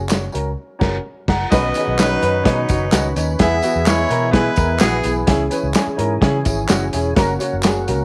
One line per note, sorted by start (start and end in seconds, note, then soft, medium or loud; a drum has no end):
0.00 0.28 F#1 medium
0.08 0.23 C#4 medium
0.08 0.23 F#4 medium
0.08 0.23 C#5 medium
0.08 snare loud
0.08 clap medium
0.08 closed hi-hat medium
0.08 tambourine medium
0.32 0.54 C#2 medium
0.32 0.47 C#4 medium
0.32 0.47 F#4 medium
0.32 0.48 A#4 medium
0.32 closed hi-hat medium
0.32 tambourine soft
0.79 0.97 F#1 medium
0.79 0.96 C#4 medium
0.79 0.96 F#4 medium
0.79 0.97 A#4 medium
0.79 0.97 A#5 medium
0.79 kick loud
0.79 snare loud
0.79 crash medium
1.28 1.44 F#1 medium
1.28 1.45 F#5 medium
1.28 1.45 A#5 loud
1.28 kick loud
1.28 snare loud
1.28 crash medium
1.51 1.71 B1 medium
1.51 3.39 D#3 medium
1.51 1.96 B3 loud
1.51 1.65 C#4 loud
1.51 3.39 C#4 medium
1.51 1.66 D#4 loud
1.51 1.96 F#4 loud
1.51 1.66 B4 loud
1.51 3.39 B4 medium
1.51 1.96 D#5 loud
1.51 kick loud
1.51 snare loud
1.51 closed hi-hat loud
1.51 tambourine medium
1.74 1.89 C#4 medium
1.74 1.90 D#4 medium
1.74 1.90 G#4 medium
1.74 closed hi-hat medium
1.74 tambourine medium
1.88 2.16 B1 medium
1.97 2.44 F#3 loud
1.97 2.12 C#4 medium
1.97 2.12 D#4 medium
1.97 2.44 D#4 loud
1.97 2.12 B4 medium
1.97 2.44 B4 loud
1.97 snare loud
1.97 clap medium
1.97 closed hi-hat medium
1.97 tambourine medium
2.21 2.42 F#2 medium
2.21 2.35 C#4 medium
2.21 2.36 D#4 medium
2.21 2.36 B4 medium
2.21 closed hi-hat medium
2.44 2.65 B2 medium
2.44 3.13 F#3 loud
2.44 2.59 C#4 loud
2.44 2.59 D#4 loud
2.44 3.13 D#4 loud
2.44 2.59 B4 loud
2.44 3.13 C#5 loud
2.44 kick loud
2.44 snare loud
2.44 closed hi-hat medium
2.69 2.89 F#1 medium
2.69 2.83 C#4 medium
2.69 2.83 D#4 medium
2.69 2.83 F#4 medium
2.69 kick loud
2.69 closed hi-hat medium
2.69 tambourine medium
2.92 3.12 C#2 medium
2.92 3.06 C#4 loud
2.92 3.06 D#4 loud
2.92 3.07 F#4 loud
2.92 snare loud
2.92 clap medium
2.92 closed hi-hat medium
2.92 tambourine medium
3.16 3.36 D#2 medium
3.16 3.30 C#4 medium
3.16 3.30 D#4 medium
3.16 3.31 C#5 medium
3.16 closed hi-hat medium
3.16 tambourine medium
3.39 3.59 E2 loud
3.39 3.53 B3 loud
3.39 3.84 B3 loud
3.39 5.27 B3 medium
3.39 3.54 E4 loud
3.39 3.85 G#4 loud
3.39 3.54 G#4 loud
3.39 7.14 G#4 medium
3.39 3.84 E5 loud
3.39 kick loud
3.39 snare loud
3.39 closed hi-hat loud
3.39 tambourine soft
3.43 7.14 E3 medium
3.62 3.77 B3 medium
3.62 3.77 E4 medium
3.62 3.77 F#4 loud
3.62 closed hi-hat medium
3.62 tambourine medium
3.76 4.04 E2 loud
3.86 4.32 G#3 loud
3.86 4.00 B3 medium
3.86 4.01 E4 medium
3.86 4.32 E4 loud
3.86 4.01 G#4 medium
3.86 4.32 C#5 loud
3.86 snare loud
3.86 clap medium
3.86 closed hi-hat medium
3.86 tambourine loud
4.08 4.49 B2 medium
4.08 4.23 B3 medium
4.08 4.24 E4 medium
4.08 4.24 A#4 medium
4.08 closed hi-hat medium
4.08 tambourine soft
4.31 4.78 G#3 loud
4.31 4.46 B3 loud
4.31 4.47 E4 loud
4.31 4.78 E4 loud
4.31 4.48 G#4 loud
4.31 4.78 B4 loud
4.31 kick medium
4.31 snare loud
4.31 closed hi-hat medium
4.56 4.77 E2 medium
4.56 4.70 B3 medium
4.56 4.71 E4 medium
4.56 4.71 A#4 medium
4.56 kick loud
4.56 closed hi-hat medium
4.56 tambourine medium
4.79 5.01 A#1 medium
4.79 5.14 E3 loud
4.79 5.14 B3 loud
4.79 4.94 B3 loud
4.79 4.95 E4 medium
4.79 4.95 F#4 loud
4.79 5.14 G#4 loud
4.79 snare loud
4.79 clap medium
4.79 closed hi-hat medium
4.79 tambourine medium
5.03 5.24 B1 medium
5.03 5.18 B3 medium
5.03 5.18 E4 medium
5.03 5.19 G#4 medium
5.03 closed hi-hat medium
5.03 tambourine medium
5.27 5.47 C#2 loud
5.27 5.41 C#4 loud
5.27 7.14 C#4 medium
5.27 5.41 E4 loud
5.27 5.42 G#4 loud
5.27 kick loud
5.27 snare loud
5.27 closed hi-hat loud
5.27 tambourine soft
5.50 5.65 C#4 medium
5.50 5.65 E4 medium
5.50 5.65 B4 medium
5.50 closed hi-hat medium
5.50 tambourine medium
5.63 5.73 C#2 loud
5.74 5.89 C#4 medium
5.74 5.89 E4 medium
5.74 5.89 G#4 medium
5.74 snare loud
5.74 clap medium
5.74 closed hi-hat medium
5.74 tambourine medium
5.87 muted fingered electric bass stroke soft
5.97 6.18 G#2 medium
5.97 6.11 C#4 medium
5.97 6.12 E4 medium
5.97 6.12 A#4 medium
5.97 closed hi-hat medium
6.21 6.41 C#3 medium
6.21 6.35 C#4 loud
6.21 6.36 E4 medium
6.21 6.36 G#4 loud
6.21 kick loud
6.21 snare loud
6.21 closed hi-hat medium
6.45 6.65 G#1 loud
6.45 6.59 C#4 medium
6.45 6.60 E4 medium
6.45 6.60 G#4 medium
6.45 kick loud
6.45 closed hi-hat medium
6.45 tambourine medium
6.68 6.89 F#1 loud
6.68 6.82 C#4 loud
6.68 6.83 E4 medium
6.68 6.83 F#4 loud
6.68 snare loud
6.68 clap medium
6.68 closed hi-hat medium
6.68 tambourine medium
6.93 7.13 E1 medium
6.93 7.07 C#4 medium
6.93 7.07 E4 medium
6.93 7.07 G#4 medium
6.93 closed hi-hat medium
6.93 tambourine medium
7.15 7.36 F#1 loud
7.15 8.05 C#3 medium
7.15 8.05 A#3 medium
7.15 7.30 C#4 loud
7.15 8.05 F#4 medium
7.15 7.30 F#4 loud
7.15 7.31 A#4 loud
7.15 kick loud
7.15 snare loud
7.15 closed hi-hat loud
7.15 tambourine medium
7.39 7.53 C#4 medium
7.39 7.54 F#4 medium
7.39 7.54 C#5 loud
7.39 closed hi-hat medium
7.39 tambourine medium
7.53 7.90 F#1 medium
7.63 7.77 C#4 medium
7.63 7.77 F#4 medium
7.63 7.78 G#4 medium
7.63 snare loud
7.63 clap medium
7.63 closed hi-hat medium
7.63 tambourine loud
7.87 8.05 C#2 medium
7.87 8.01 C#4 medium
7.87 8.01 F#4 medium
7.87 8.02 A#4 medium
7.87 closed hi-hat medium
7.87 tambourine soft